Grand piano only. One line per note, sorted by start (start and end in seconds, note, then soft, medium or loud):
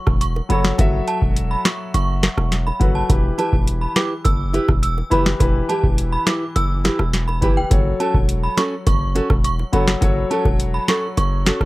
0.00 0.49 F#3 medium
0.00 0.50 F#4 medium
0.00 0.51 A4 medium
0.00 0.52 C#5 medium
0.49 0.75 F#3 medium
0.49 0.75 F#4 medium
0.49 0.76 A4 medium
0.49 0.76 C#5 medium
0.78 1.81 F#3 medium
0.78 1.81 F#4 medium
0.78 1.82 A4 medium
0.78 1.82 E5 loud
2.80 3.06 F#3 medium
2.80 3.06 F#4 medium
2.80 3.07 A4 medium
2.80 3.07 B4 medium
3.09 4.12 E3 medium
3.09 4.12 E4 medium
3.09 4.12 G4 medium
3.09 4.13 B4 medium
5.10 5.37 E3 medium
5.10 5.37 E4 medium
5.10 5.37 G4 medium
5.10 5.38 B4 medium
5.39 6.42 E3 medium
5.39 6.43 E4 medium
5.39 6.43 G4 medium
5.39 6.44 B4 loud
7.41 7.67 E3 medium
7.41 7.68 E4 medium
7.41 7.68 G4 medium
7.41 7.69 B4 medium
7.70 8.73 F#3 medium
7.70 8.73 F#4 medium
7.70 8.74 A4 medium
7.70 8.74 C#5 medium
9.72 9.98 F#3 medium
9.72 9.99 F#4 medium
9.72 9.99 A4 medium
9.72 10.00 C#5 medium
10.01 11.04 F#3 medium
10.01 11.04 F#4 medium
10.01 11.05 A4 medium
10.01 11.05 C#5 loud